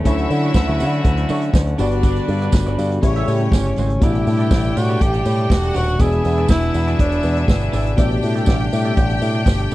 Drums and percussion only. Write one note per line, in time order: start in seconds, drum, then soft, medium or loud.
0.05 kick loud
0.05 closed hi-hat medium
0.05 tambourine soft
0.18 closed hi-hat soft
0.30 open hi-hat medium
0.30 tambourine soft
0.43 closed hi-hat soft
0.54 kick loud
0.54 snare loud
0.54 tambourine medium
0.68 closed hi-hat soft
0.80 open hi-hat medium
0.80 tambourine medium
0.93 closed hi-hat soft
1.05 kick loud
1.05 closed hi-hat medium
1.17 closed hi-hat soft
1.29 open hi-hat medium
1.29 tambourine soft
1.42 closed hi-hat medium
1.54 kick loud
1.54 snare loud
1.54 tambourine medium
1.67 closed hi-hat soft
1.78 open hi-hat medium
1.78 tambourine medium
1.91 closed hi-hat soft
2.03 kick loud
2.03 closed hi-hat medium
2.03 tambourine soft
2.16 closed hi-hat soft
2.28 open hi-hat medium
2.42 closed hi-hat soft
2.52 kick loud
2.52 snare loud
2.52 tambourine medium
2.66 closed hi-hat soft
2.78 open hi-hat medium
2.78 tambourine medium
2.92 closed hi-hat soft
3.03 kick loud
3.03 closed hi-hat medium
3.03 tambourine soft
3.15 closed hi-hat soft
3.28 open hi-hat medium
3.28 tambourine soft
3.40 closed hi-hat soft
3.52 kick loud
3.52 snare loud
3.52 tambourine medium
3.65 closed hi-hat soft
3.76 open hi-hat medium
3.76 tambourine soft
3.90 closed hi-hat soft
4.02 kick loud
4.02 closed hi-hat medium
4.02 tambourine soft
4.15 closed hi-hat soft
4.27 open hi-hat medium
4.27 tambourine soft
4.40 closed hi-hat soft
4.51 kick loud
4.51 snare loud
4.51 tambourine medium
4.64 closed hi-hat soft
4.77 open hi-hat medium
4.77 tambourine medium
4.90 closed hi-hat soft
5.01 kick loud
5.01 closed hi-hat medium
5.01 tambourine soft
5.14 closed hi-hat soft
5.26 open hi-hat medium
5.26 tambourine soft
5.38 closed hi-hat soft
5.50 kick loud
5.50 snare loud
5.50 tambourine medium
5.63 closed hi-hat soft
5.74 open hi-hat medium
5.74 tambourine medium
5.88 closed hi-hat soft
5.99 kick loud
5.99 closed hi-hat medium
5.99 tambourine medium
6.12 closed hi-hat soft
6.24 open hi-hat medium
6.24 tambourine soft
6.38 closed hi-hat soft
6.48 kick loud
6.48 snare loud
6.48 tambourine loud
6.62 closed hi-hat soft
6.74 open hi-hat medium
6.74 tambourine medium
6.88 closed hi-hat soft
6.99 kick loud
6.99 closed hi-hat medium
7.12 closed hi-hat soft
7.23 open hi-hat medium
7.23 tambourine soft
7.37 closed hi-hat soft
7.48 kick loud
7.48 snare loud
7.48 tambourine medium
7.61 closed hi-hat medium
7.73 open hi-hat medium
7.73 tambourine medium
7.86 closed hi-hat soft
7.98 kick loud
7.98 closed hi-hat medium
7.98 tambourine medium
8.11 closed hi-hat soft
8.23 open hi-hat medium
8.23 tambourine soft
8.36 closed hi-hat soft
8.46 kick loud
8.46 snare loud
8.46 tambourine medium
8.60 closed hi-hat soft
8.72 open hi-hat medium
8.72 tambourine medium
8.85 closed hi-hat soft
8.97 kick loud
8.97 closed hi-hat medium
8.97 tambourine soft
9.10 closed hi-hat soft
9.22 open hi-hat medium
9.22 tambourine medium
9.34 closed hi-hat soft
9.46 kick loud
9.46 snare loud
9.46 tambourine medium
9.59 closed hi-hat soft
9.71 open hi-hat medium
9.71 tambourine medium